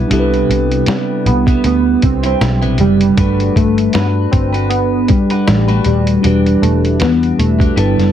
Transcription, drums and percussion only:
0.11 closed hi-hat loud
0.34 closed hi-hat soft
0.51 closed hi-hat medium
0.71 closed hi-hat soft
0.86 snare loud
0.86 closed hi-hat medium
1.26 closed hi-hat medium
1.47 kick medium
1.47 closed hi-hat soft
1.64 closed hi-hat medium
2.02 kick medium
2.02 closed hi-hat medium
2.24 closed hi-hat medium
2.41 snare medium
2.41 closed hi-hat medium
2.62 closed hi-hat soft
2.78 closed hi-hat medium
3.01 closed hi-hat medium
3.18 kick loud
3.18 closed hi-hat medium
3.40 closed hi-hat soft
3.56 kick medium
3.56 closed hi-hat medium
3.78 closed hi-hat soft
3.93 snare loud
3.93 closed hi-hat medium
4.33 kick medium
4.33 closed hi-hat medium
4.54 closed hi-hat soft
4.71 closed hi-hat medium
5.08 kick loud
5.08 closed hi-hat medium
5.30 closed hi-hat soft
5.48 snare medium
5.48 closed hi-hat medium
5.68 closed hi-hat soft
5.84 closed hi-hat medium
6.07 closed hi-hat medium
6.24 closed hi-hat loud
6.46 closed hi-hat soft
6.63 closed hi-hat medium
6.85 closed hi-hat soft
7.00 snare loud
7.00 closed hi-hat medium
7.23 closed hi-hat soft
7.40 closed hi-hat medium
7.60 kick medium
7.60 closed hi-hat soft
7.78 closed hi-hat medium
7.99 snare soft
7.99 closed hi-hat soft

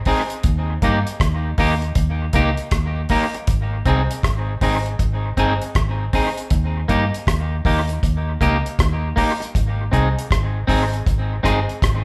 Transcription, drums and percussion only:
0.05 kick medium
0.05 open hi-hat medium
0.30 closed hi-hat medium
0.43 kick loud
0.43 closed hi-hat medium
0.82 kick medium
0.82 closed hi-hat medium
1.07 closed hi-hat medium
1.20 kick loud
1.20 cross-stick loud
1.20 closed hi-hat medium
1.58 kick medium
1.58 open hi-hat medium
1.82 closed hi-hat soft
1.95 kick loud
1.95 closed hi-hat medium
2.33 kick medium
2.33 closed hi-hat medium
2.57 closed hi-hat medium
2.71 kick loud
2.71 cross-stick loud
2.71 closed hi-hat medium
3.09 kick medium
3.09 open hi-hat medium
3.34 closed hi-hat medium
3.47 kick loud
3.47 closed hi-hat medium
3.86 kick medium
3.86 closed hi-hat medium
4.11 closed hi-hat medium
4.23 kick loud
4.23 cross-stick loud
4.23 closed hi-hat medium
4.61 kick medium
4.61 open hi-hat medium
4.86 closed hi-hat soft
4.99 kick loud
4.99 closed hi-hat medium
5.37 kick medium
5.37 closed hi-hat medium
5.62 closed hi-hat soft
5.75 kick loud
5.75 cross-stick loud
5.75 closed hi-hat medium
6.13 kick medium
6.13 open hi-hat medium
6.37 closed hi-hat medium
6.50 kick loud
6.50 closed hi-hat medium
6.89 kick medium
6.89 closed hi-hat medium
7.14 closed hi-hat medium
7.27 kick medium
7.27 cross-stick loud
7.27 closed hi-hat medium
7.65 kick medium
7.65 open hi-hat medium
7.89 closed hi-hat soft
8.03 kick loud
8.03 closed hi-hat medium
8.41 kick medium
8.41 closed hi-hat medium
8.66 closed hi-hat medium
8.79 kick loud
8.79 cross-stick loud
8.79 closed hi-hat loud
9.17 kick medium
9.17 open hi-hat medium
9.42 closed hi-hat medium
9.55 kick loud
9.55 closed hi-hat medium
9.93 kick medium
9.93 closed hi-hat medium
10.19 closed hi-hat medium
10.31 kick loud
10.31 cross-stick loud
10.31 closed hi-hat medium
10.68 kick medium
10.68 open hi-hat medium
10.93 closed hi-hat soft
11.06 kick loud
11.06 closed hi-hat medium
11.44 kick medium
11.44 cross-stick medium
11.44 closed hi-hat medium
11.69 closed hi-hat soft
11.82 kick loud
11.82 cross-stick loud
11.82 closed hi-hat medium

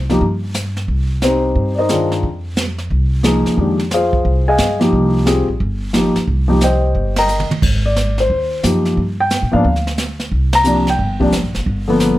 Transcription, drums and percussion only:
0.10 snare soft
0.21 brush sweep soft
0.21 kick soft
0.54 snare medium
0.54 hi-hat pedal medium
0.77 snare soft
0.88 brush sweep soft
0.88 kick soft
1.22 snare medium
1.22 hi-hat pedal medium
1.56 brush sweep soft
1.56 kick soft
1.89 snare soft
1.89 hi-hat pedal medium
2.12 snare soft
2.23 brush sweep soft
2.23 kick soft
2.56 snare medium
2.56 hi-hat pedal soft
2.78 snare soft
2.90 brush sweep soft
2.90 kick soft
3.24 snare medium
3.24 hi-hat pedal medium
3.46 snare soft
3.58 brush sweep soft
3.58 kick soft
3.79 snare soft
3.91 snare medium
3.91 hi-hat pedal medium
4.13 kick soft
4.25 brush sweep soft
4.25 kick soft
4.58 snare medium
4.58 hi-hat pedal medium
4.81 snare soft
4.93 brush sweep soft
4.93 kick soft
5.26 snare medium
5.26 hi-hat pedal soft
5.60 brush sweep soft
5.60 kick soft
5.93 snare soft
5.93 hi-hat pedal soft
6.16 snare soft
6.28 brush sweep soft
6.28 kick soft
6.61 snare medium
6.61 hi-hat pedal medium
6.95 brush sweep soft
6.95 kick soft
7.16 snare medium
7.16 ride medium
7.28 hi-hat pedal soft
7.40 mid tom soft
7.51 mid tom medium
7.62 brush sweep soft
7.62 kick medium
7.62 crash medium
7.96 snare medium
7.96 hi-hat pedal medium
8.18 snare soft
8.30 brush sweep soft
8.30 kick soft
8.63 snare medium
8.63 hi-hat pedal medium
8.85 snare soft
8.97 brush sweep soft
8.97 kick soft
9.30 snare medium
9.30 hi-hat pedal soft
9.64 brush sweep soft
9.64 kick soft
9.76 snare soft
9.87 snare soft
9.98 snare medium
9.98 hi-hat pedal soft
10.20 snare soft
10.31 brush sweep soft
10.31 kick soft
10.52 snare medium
10.52 ride medium
10.64 hi-hat pedal medium
10.87 snare soft
10.99 brush sweep soft
10.99 kick soft
11.21 kick soft
11.32 snare medium
11.32 hi-hat pedal medium
11.55 snare soft
11.66 brush sweep soft
11.66 kick soft
12.00 snare medium
12.00 hi-hat pedal medium

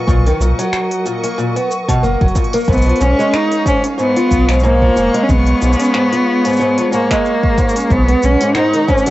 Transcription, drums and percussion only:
0.08 kick loud
0.08 cabasa soft
0.26 open hi-hat soft
0.41 cabasa medium
0.59 open hi-hat medium
0.59 cabasa soft
0.73 finger snap medium
0.73 cabasa soft
0.91 open hi-hat soft
1.06 cabasa medium
1.23 open hi-hat soft
1.23 cabasa soft
1.39 cabasa soft
1.56 open hi-hat soft
1.71 cabasa medium
1.89 kick medium
1.89 open hi-hat soft
1.89 cabasa soft
2.04 cabasa soft
2.21 kick loud
2.21 open hi-hat soft
2.28 open hi-hat soft
2.35 kick medium
2.35 open hi-hat soft
2.35 cabasa medium
2.44 open hi-hat soft
2.53 open hi-hat soft
2.53 cabasa soft
2.57 cabasa soft
2.61 cabasa soft
2.64 cabasa soft
2.68 kick loud
2.68 cabasa soft
2.73 cabasa soft
2.77 cabasa soft
2.82 cabasa soft
2.86 open hi-hat soft
2.90 open hi-hat soft
2.96 open hi-hat soft
3.01 cabasa medium
3.20 cabasa soft
3.34 finger snap medium
3.34 cabasa soft
3.52 open hi-hat soft
3.66 kick loud
3.66 cabasa medium
3.84 open hi-hat medium
3.84 cabasa soft
3.99 cabasa soft
4.17 open hi-hat soft
4.31 kick medium
4.31 cabasa medium
4.49 finger snap medium
4.49 open hi-hat soft
4.49 cabasa soft
4.53 cabasa soft
4.59 cabasa soft
4.64 cabasa soft
4.82 kick medium
4.97 cabasa medium
5.14 open hi-hat soft
5.29 kick loud
5.29 cabasa soft
5.47 open hi-hat soft
5.62 cabasa medium
5.73 cabasa soft
5.80 open hi-hat soft
5.80 cabasa soft
5.84 cabasa soft
5.94 finger snap medium
5.94 cabasa soft
6.13 open hi-hat soft
6.45 open hi-hat soft
6.45 cabasa soft
6.49 cabasa soft
6.52 cabasa soft
6.56 cabasa soft
6.60 cabasa soft
6.78 open hi-hat soft
6.93 cabasa medium
7.11 finger snap medium
7.11 kick medium
7.11 open hi-hat medium
7.11 cabasa soft
7.25 cabasa soft
7.43 kick loud
7.58 kick loud
7.58 cabasa medium
7.69 cabasa medium
7.76 open hi-hat soft
7.76 cabasa soft
7.80 cabasa soft
7.90 kick loud
7.90 cabasa soft
8.08 open hi-hat soft
8.23 cabasa medium
8.41 open hi-hat medium
8.41 cabasa soft
8.55 finger snap medium
8.55 cabasa soft
8.73 open hi-hat soft
8.88 kick medium
8.88 cabasa soft
8.98 cabasa soft
9.06 open hi-hat soft
9.06 cabasa soft

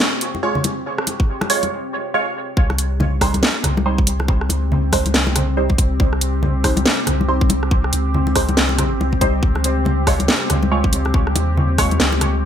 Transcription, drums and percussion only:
0.00 snare loud
0.21 closed hi-hat medium
0.35 muted conga medium
0.35 high conga medium
0.55 low conga medium
0.64 closed hi-hat medium
0.64 muted conga medium
0.64 high conga medium
0.98 cross-stick medium
1.07 closed hi-hat medium
1.07 muted conga medium
1.20 kick loud
1.41 cross-stick medium
1.41 muted conga medium
1.50 open hi-hat loud
1.63 closed hi-hat soft
1.63 high conga medium
2.57 kick loud
2.70 cross-stick medium
2.70 muted conga medium
2.78 closed hi-hat medium
3.00 muted conga medium
3.00 low conga loud
3.21 kick medium
3.21 cross-stick medium
3.21 open hi-hat medium
3.34 closed hi-hat soft
3.34 high conga loud
3.42 snare loud
3.42 muted conga medium
3.64 cross-stick medium
3.64 closed hi-hat medium
3.64 low conga medium
3.77 muted conga medium
3.77 high conga medium
3.98 kick loud
4.07 closed hi-hat medium
4.07 high conga medium
4.20 cross-stick medium
4.20 muted conga medium
4.28 kick loud
4.41 cross-stick medium
4.49 closed hi-hat medium
4.49 muted conga medium
4.72 low conga loud
4.92 kick medium
4.92 cross-stick medium
4.92 open hi-hat loud
4.92 muted conga medium
5.06 closed hi-hat soft
5.06 high conga medium
5.14 snare loud
5.27 muted conga medium
5.36 cross-stick medium
5.36 closed hi-hat medium
5.36 low conga medium
5.69 kick medium
5.69 muted conga medium
5.69 high conga medium
5.78 kick loud
5.78 closed hi-hat medium
6.00 kick loud
6.00 muted conga medium
6.13 cross-stick medium
6.21 closed hi-hat medium
6.43 muted conga medium
6.43 low conga medium
6.64 kick medium
6.64 cross-stick medium
6.64 open hi-hat medium
6.77 closed hi-hat soft
6.77 muted conga medium
6.77 high conga medium
6.86 snare loud
7.07 cross-stick medium
7.07 closed hi-hat medium
7.07 low conga medium
7.21 muted conga soft
7.21 high conga medium
7.41 kick loud
7.50 closed hi-hat medium
7.50 muted conga medium
7.50 high conga medium
7.63 cross-stick medium
7.71 kick loud
7.84 cross-stick medium
7.93 closed hi-hat medium
7.93 muted conga soft
8.14 low conga medium
8.27 muted conga medium
8.36 kick medium
8.36 cross-stick medium
8.36 open hi-hat medium
8.49 closed hi-hat soft
8.49 high conga loud
8.57 snare loud
8.69 muted conga medium
8.78 cross-stick medium
8.78 closed hi-hat medium
8.78 low conga medium
9.01 muted conga medium
9.12 kick medium
9.12 high conga medium
9.21 kick loud
9.21 closed hi-hat medium
9.43 kick loud
9.55 cross-stick medium
9.55 muted conga medium
9.64 closed hi-hat medium
9.85 muted conga medium
9.85 low conga medium
10.07 kick medium
10.07 cross-stick medium
10.07 open hi-hat medium
10.20 closed hi-hat soft
10.20 high conga medium
10.28 snare loud
10.28 muted conga soft
10.50 cross-stick medium
10.50 closed hi-hat medium
10.50 low conga medium
10.63 muted conga medium
10.63 high conga medium
10.84 kick loud
10.93 closed hi-hat medium
10.93 high conga medium
11.05 cross-stick medium
11.05 muted conga soft
11.14 kick loud
11.27 cross-stick medium
11.36 closed hi-hat medium
11.36 muted conga medium
11.57 low conga loud
11.78 kick medium
11.78 cross-stick medium
11.78 open hi-hat medium
11.78 muted conga medium
11.91 closed hi-hat soft
11.91 high conga medium
12.00 snare loud
12.13 muted conga medium
12.21 cross-stick medium
12.21 closed hi-hat medium
12.21 low conga medium

